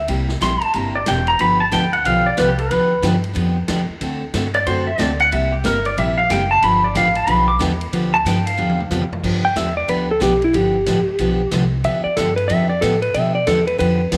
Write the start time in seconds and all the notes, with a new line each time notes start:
0.08 C2 C3 G3 A#3 E4 G4, ride
0.29 snare
0.41 A#1 C3 G3 A#3 E4 G4 C6, snare, hi-hat pedal, ride
0.61 A5, muted upright bass stroke, ride
0.74 G1 C3 G3 A#3 E4 G4 A#5, ride
0.95 D5
1.06 E1 C3 G3 A#3 E4 G4 G5, snare, hi-hat pedal, ride
1.27 A#5, ride
1.39 G1 D3 F3 B3 D4 G4 B5, ride
1.60 A5
1.72 D2 D3 F3 B3 D4 G4 G5, snare, hi-hat pedal, ride
1.93 F#5, ride
2.05 B1 D3 F3 B3 D4 G4 F5, ride
2.26 D5
2.37 C2 D3 F3 B3 D4 G4 B4, snare, hi-hat pedal, ride
2.48 G4
2.58 A4, ride
2.71 D2 D3 F3 B3 D4 G4 B4, ride
3.02 G2 D3 F3 B3 D4 G4, snare, hi-hat pedal, ride
3.24 ride
3.33 F2 D3 F3 B3 D4 G4, ride
3.68 E2 D3 F3 B3 D4 G4, snare, hi-hat pedal, ride
3.89 muted upright bass stroke
4.01 D2 D3 A3 C4 F#4 A4, ride
4.34 G2 D3 A3 C4 F#4 A4, snare, hi-hat pedal, ride
4.54 D5, ride
4.66 F#2 D3 A3 C4 F#4 A4 C5, ride
4.87 E5
4.98 D2 D3 A3 C4 F#4 A4 D5, snare, hi-hat pedal, ride
5.20 F#5, ride
5.31 C2 C3 G3 A#3 E4 G4 E5, ride
5.52 G4
5.64 G1 C3 G3 A#3 E4 G4 A#4, snare, hi-hat pedal, ride
5.85 D5, ride
5.97 A#1 C3 G3 A#3 E4 G4 E5, ride
6.18 F5
6.30 F#1 C3 G3 A#3 E4 G4 G5, snare, hi-hat pedal, ride
6.51 A5
6.62 G1 D3 F3 B3 D4 G4 B5, ride
6.84 D5
6.95 A1 D3 F3 B3 D4 G4 F5, snare, hi-hat pedal, ride
7.15 A5, ride
7.27 B1 D3 F3 B3 D4 G4 B5, ride
7.48 D6
7.59 E2 D3 F3 B3 D4 G4, snare, hi-hat pedal, ride
7.81 ride
7.92 D2 D3 F3 B3 D4 G4, ride
8.14 A5
8.25 G2 D3 F3 B3 D4 G4 G5, snare, hi-hat pedal, ride
8.46 F5, ride
8.57 E2 D3 F3 B3 D4 G4
8.70 high tom
8.80 mid tom
8.91 F2 D3 F3 B3 D4 G4, hi-hat pedal, high tom
9.02 high tom
9.11 muted upright bass stroke, floor tom
9.24 G2 D3 F3 B3 D4 G4, kick, crash
9.45 G5
9.56 E2 D3 F3 B3 D4 G4 E5, snare, hi-hat pedal, ride
9.77 D5
9.88 D2 D3 F3 B3 D4 G4 B4, ride
10.11 A4
10.20 B1 D3 F3 B3 D4 G4, snare, hi-hat pedal, ride
10.42 E4, ride
10.53 G1 D3 F3 B3 D4 G4, ride
10.86 A1 D3 F3 B3 D4 G4, snare, hi-hat pedal, ride
11.07 muted upright bass stroke
11.19 B1 D3 F3 B3 D4 G4, ride
11.51 C2 D3 F3 B3 D4 G4, snare, hi-hat pedal, ride
11.84 D2 D3 F3 B3 D4 G4 E5, ride
12.04 D5, muted upright bass stroke
12.17 G2 D3 F3 B3 D4 G4 A4, snare, hi-hat pedal, ride
12.36 B4, ride
12.48 F2 D3 F3 B3 D4 G4 E5, ride
12.69 D5
12.81 A2 D3 F3 B3 D4 G4 A4, snare, hi-hat pedal, ride
13.02 B4, ride
13.14 B2 D3 F3 B3 D4 G4 E5, ride
13.35 D5
13.47 E2 D3 F3 B3 D4 G4 A4, snare, hi-hat pedal, ride
13.67 B4, ride
13.78 F2 D3 F3 B3 D4 G4 B4, ride
14.12 D2 D3 F3 B3 D4 G4, snare, hi-hat pedal, ride